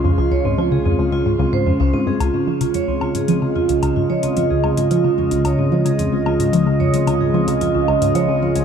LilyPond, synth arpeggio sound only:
\new Staff \with { instrumentName = "Synth arpeggio sound" } { \clef bass \time 4/4 \key des \major \tempo 4 = 111 f,16 des,16 des,16 aes,16 f16 des16 f,16 des,16 des,16 aes,16 des,16 aes,16 f,16 des,16 aes,16 g,16 | des,16 aes,16 f16 des16 f,16 des,16 des,16 aes,16 f16 des16 f,16 des,16 des,16 aes,16 f16 des16 | f,16 des,16 des,16 aes,16 f16 des16 f,16 des,16 des,16 aes,16 f16 des16 f,16 des,16 des,16 aes,16 | f16 des16 f,16 des,16 des,16 aes,16 f16 des16 f,16 des,16 des,16 aes,16 f16 des16 f,16 des,16 | }